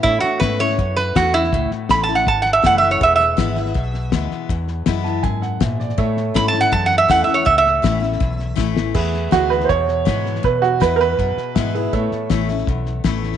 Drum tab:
CC |----------------|----------------|----------------|----------------|
HH |----p-------p---|----p-------p---|----p-------p---|----p-------p---|
SD |o-o-o-ooo-o-o-oo|o-o-o-ooo-o-o-o-|o-o-o-ooo-o-o-o-|o-o-o-o-o-o-o-oo|
BD |o---o---o---o---|o---o---o---o---|o---o---o---o---|o---o---o---o---|

CC |----------------|----------------|x---------------|----------------|
HH |----p-------p---|----p-------p---|----p-------p---|----p-------p---|
SD |o-o-o-ooo-o-o-o-|o-o-o-ooo-o-o-o-|o-o-o-ooo-o-o-oo|o-o-o-o-o-o-o-o-|
BD |o---o---o---o---|o---o---o---o---|o---o---o---o---|o---o---o---o---|

CC |----------------|
HH |----p-------p---|
SD |o-o-o-ooo-o-o-oo|
BD |o---o---o---o---|